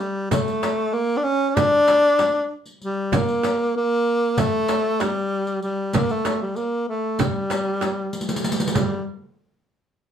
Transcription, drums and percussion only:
0.01 darbuka ka
0.31 riq, frame drum, darbuka dum
0.47 riq, darbuka ka
0.63 riq, darbuka tek, frame drum
1.57 riq, frame drum, darbuka dum
1.88 riq, darbuka tek, frame drum
2.19 riq, darbuka tek, frame drum
2.66 riq
2.81 riq, darbuka ka
3.12 riq, darbuka dum, frame drum
3.28 riq, darbuka ka
3.43 riq, darbuka tek, frame drum
4.37 riq, darbuka dum, frame drum
4.68 riq, darbuka tek, frame drum
5.00 riq, darbuka tek, frame drum
5.47 riq
5.63 riq, darbuka ka
5.93 riq, frame drum, darbuka dum
6.09 riq, darbuka ka
6.25 riq, darbuka tek, frame drum
6.56 riq, darbuka ka
7.19 riq, frame drum, darbuka dum
7.50 riq, darbuka tek, frame drum
7.81 riq, darbuka tek, frame drum
7.98 darbuka ka
8.13 riq
8.21 riq
8.29 riq, darbuka ka
8.36 riq
8.44 riq
8.52 riq
8.60 riq
8.67 riq
8.75 riq, frame drum, darbuka dum

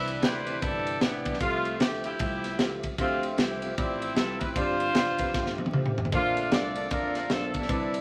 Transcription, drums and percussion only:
0.08 ride
0.22 snare, ride
0.47 ride
0.62 kick, ride
0.87 ride
1.01 snare, ride
1.25 kick, ride
1.33 snare
1.41 kick, ride
1.65 ride
1.80 snare, ride
2.04 ride
2.19 kick, ride
2.44 snare, ride
2.59 snare, ride
2.83 kick, ride
2.98 kick, ride
3.23 ride
3.38 snare, ride
3.62 ride
3.78 kick, ride
4.02 ride
4.16 snare, ride
4.41 kick, ride
4.56 kick, ride
4.80 ride
4.95 snare, ride
5.18 kick, ride
5.34 kick, snare
5.46 snare
5.58 high tom
5.66 high tom
5.73 mid tom
5.86 mid tom
5.98 floor tom
6.05 floor tom
6.12 kick, ride
6.37 ride
6.52 snare, ride
6.75 ride
6.91 kick, ride
7.15 snare, ride
7.30 snare, ride
7.54 kick, ride
7.62 snare
7.69 kick, ride
7.94 ride

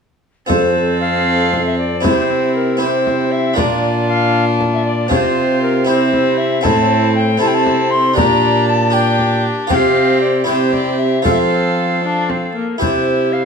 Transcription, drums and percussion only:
0.50 frame drum
1.53 frame drum
2.04 frame drum
3.07 frame drum
3.58 frame drum
4.61 frame drum
5.11 frame drum
6.13 frame drum
6.65 frame drum
7.67 frame drum
8.17 frame drum
9.19 frame drum
9.70 frame drum
10.73 frame drum
11.25 frame drum
12.30 frame drum
12.82 frame drum

